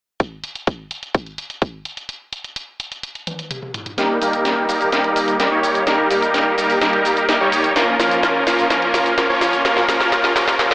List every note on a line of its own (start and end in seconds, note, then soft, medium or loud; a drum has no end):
0.20 kick loud
0.20 closed hi-hat medium
0.44 closed hi-hat medium
0.55 closed hi-hat medium
0.67 kick loud
0.67 closed hi-hat medium
0.91 closed hi-hat medium
1.03 closed hi-hat medium
1.15 kick loud
1.15 closed hi-hat medium
1.26 closed hi-hat soft
1.38 closed hi-hat medium
1.50 closed hi-hat medium
1.62 kick loud
1.62 closed hi-hat medium
1.85 closed hi-hat medium
1.97 closed hi-hat medium
2.09 closed hi-hat medium
2.33 closed hi-hat medium
2.44 closed hi-hat medium
2.56 closed hi-hat medium
2.80 closed hi-hat medium
2.92 closed hi-hat medium
3.03 closed hi-hat medium
3.15 closed hi-hat soft
3.27 closed hi-hat medium
3.27 high tom medium
3.39 closed hi-hat medium
3.51 closed hi-hat medium
3.51 mid tom medium
3.63 mid tom medium
3.74 closed hi-hat medium
3.74 mid tom medium
3.86 closed hi-hat medium
3.86 mid tom medium
3.98 4.19 D#2 medium
3.98 4.19 G3 medium
3.98 4.19 A#3 medium
3.98 4.19 D#4 medium
3.98 4.19 G4 medium
3.98 4.19 A#4 loud
3.98 snare soft
3.98 closed hi-hat medium
3.98 shaker soft
4.21 4.66 D#2 loud
4.21 4.66 G3 medium
4.21 4.66 A#3 medium
4.21 4.66 D#4 medium
4.21 4.66 G4 medium
4.21 4.66 A#4 loud
4.21 open hi-hat loud
4.21 shaker medium
4.33 closed hi-hat medium
4.33 shaker soft
4.45 snare soft
4.45 closed hi-hat medium
4.45 shaker soft
4.69 4.90 D#2 loud
4.69 4.90 G3 medium
4.69 4.90 A#3 medium
4.69 4.90 D#4 medium
4.69 4.90 G4 medium
4.69 4.90 A#4 medium
4.69 open hi-hat loud
4.69 shaker medium
4.81 open hi-hat medium
4.81 shaker soft
4.92 5.37 D#2 loud
4.92 5.37 G3 medium
4.92 5.37 A#3 medium
4.92 5.37 D#4 medium
4.92 5.37 G4 medium
4.92 5.37 A#4 medium
4.92 snare medium
4.92 closed hi-hat medium
4.92 shaker soft
5.04 closed hi-hat soft
5.16 open hi-hat loud
5.16 shaker medium
5.28 closed hi-hat medium
5.28 shaker soft
5.40 5.49 D#2 loud
5.40 5.49 G3 medium
5.40 5.49 A#3 medium
5.40 5.49 D#4 medium
5.40 5.49 G4 medium
5.40 5.49 A#4 medium
5.40 snare medium
5.40 closed hi-hat medium
5.40 shaker soft
5.51 5.85 D#2 medium
5.51 5.84 G3 medium
5.51 5.84 A#3 medium
5.51 5.84 D#4 medium
5.51 5.84 G4 medium
5.51 5.84 C#5 loud
5.63 open hi-hat loud
5.63 shaker medium
5.75 closed hi-hat medium
5.75 shaker soft
5.87 6.08 D#2 loud
5.87 6.08 G3 medium
5.87 6.08 A#3 medium
5.87 6.08 D#4 medium
5.87 6.08 G4 medium
5.87 6.08 A#4 loud
5.87 snare medium
5.87 closed hi-hat medium
5.87 shaker soft
6.11 6.55 D#2 medium
6.11 6.55 G3 medium
6.11 6.55 A#3 medium
6.11 6.55 D#4 medium
6.11 6.55 G4 medium
6.11 6.55 A#4 loud
6.11 open hi-hat loud
6.11 shaker medium
6.22 closed hi-hat medium
6.22 shaker soft
6.34 snare medium
6.34 closed hi-hat medium
6.34 shaker soft
6.58 6.79 D#2 loud
6.58 6.79 G3 medium
6.58 6.79 A#3 medium
6.58 6.79 D#4 medium
6.58 6.79 G4 medium
6.58 6.79 A#4 medium
6.58 open hi-hat loud
6.58 shaker medium
6.70 open hi-hat medium
6.70 shaker soft
6.81 7.26 D#2 loud
6.81 7.26 G3 medium
6.81 7.26 A#3 medium
6.81 7.26 D#4 medium
6.81 7.26 G4 medium
6.81 7.26 A#4 medium
6.81 snare medium
6.81 closed hi-hat medium
6.81 shaker soft
6.93 closed hi-hat soft
7.05 open hi-hat loud
7.05 shaker medium
7.17 closed hi-hat medium
7.17 shaker soft
7.29 7.38 D#2 medium
7.29 7.38 G3 medium
7.29 7.38 A#3 medium
7.29 7.38 D#4 medium
7.29 7.38 G4 medium
7.29 7.38 A#4 medium
7.29 snare medium
7.29 closed hi-hat medium
7.29 shaker soft
7.40 7.74 D#2 medium
7.40 7.73 G3 medium
7.40 7.73 A#3 medium
7.40 7.73 D#4 medium
7.40 7.73 G4 medium
7.40 7.73 C#5 loud
7.52 open hi-hat loud
7.52 shaker medium
7.64 closed hi-hat medium
7.64 shaker soft
7.76 7.97 A#1 loud
7.76 7.97 F3 medium
7.76 7.97 A#3 medium
7.76 7.97 C#4 medium
7.76 7.97 F4 medium
7.76 7.97 A#4 loud
7.76 snare medium
7.76 closed hi-hat medium
7.76 shaker soft
7.99 8.44 A#1 loud
7.99 8.44 F3 medium
7.99 8.44 A#3 medium
7.99 8.44 C#4 medium
7.99 8.44 F4 medium
7.99 8.44 A#4 loud
7.99 snare medium
7.99 open hi-hat loud
7.99 shaker medium
8.11 closed hi-hat medium
8.11 shaker soft
8.23 snare medium
8.23 closed hi-hat medium
8.23 shaker soft
8.47 8.68 A#1 loud
8.47 8.68 F3 medium
8.47 8.68 A#3 medium
8.47 8.68 C#4 medium
8.47 8.68 F4 medium
8.47 8.68 A#4 medium
8.47 snare medium
8.47 open hi-hat loud
8.47 shaker medium
8.59 open hi-hat medium
8.59 shaker soft
8.70 9.15 A#1 loud
8.70 9.15 F3 medium
8.70 9.15 A#3 medium
8.70 9.15 C#4 medium
8.70 9.15 F4 medium
8.70 9.15 A#4 medium
8.70 snare medium
8.70 closed hi-hat medium
8.70 shaker soft
8.82 closed hi-hat soft
8.94 snare medium
8.94 open hi-hat loud
8.94 shaker medium
9.06 closed hi-hat medium
9.06 shaker soft
9.18 9.27 A#1 loud
9.18 9.27 F3 medium
9.18 9.27 A#3 medium
9.18 9.27 C#4 medium
9.18 9.27 F4 medium
9.18 9.27 A#4 medium
9.18 snare medium
9.18 closed hi-hat medium
9.18 shaker soft
9.29 9.63 A#1 medium
9.29 9.62 F3 medium
9.29 9.62 A#3 medium
9.29 9.62 C#4 medium
9.29 9.62 F4 medium
9.29 9.62 C#5 loud
9.41 snare medium
9.41 open hi-hat loud
9.41 shaker medium
9.53 closed hi-hat medium
9.53 shaker soft
9.65 9.86 A#1 loud
9.65 9.86 F3 medium
9.65 9.86 A#3 medium
9.65 9.86 C#4 medium
9.65 9.86 F4 medium
9.65 9.86 A#4 loud
9.65 snare medium
9.65 closed hi-hat medium
9.65 shaker soft
9.77 snare medium
9.88 10.33 A#1 loud
9.88 10.33 F3 medium
9.88 10.33 A#3 medium
9.88 10.33 C#4 medium
9.88 10.33 F4 medium
9.88 10.33 A#4 loud
9.88 snare loud
9.88 open hi-hat loud
9.88 shaker medium
10.00 snare medium
10.00 closed hi-hat soft
10.00 shaker soft
10.12 snare loud
10.12 closed hi-hat medium
10.12 shaker soft
10.24 snare medium
10.24 closed hi-hat soft
10.24 shaker soft
10.36 10.57 A#1 loud
10.36 10.57 F3 medium
10.36 10.57 A#3 medium
10.36 10.57 C#4 medium
10.36 10.57 F4 medium
10.36 10.57 A#4 medium
10.36 snare loud
10.36 open hi-hat loud
10.36 shaker medium
10.48 snare medium
10.48 open hi-hat medium
10.48 shaker soft
10.59 10.74 A#1 loud
10.59 10.74 F3 medium
10.59 10.74 A#3 medium
10.59 10.74 C#4 medium
10.59 10.74 F4 medium
10.59 10.74 A#4 medium
10.59 snare loud
10.59 closed hi-hat medium
10.59 shaker soft
10.71 snare medium
10.71 closed hi-hat soft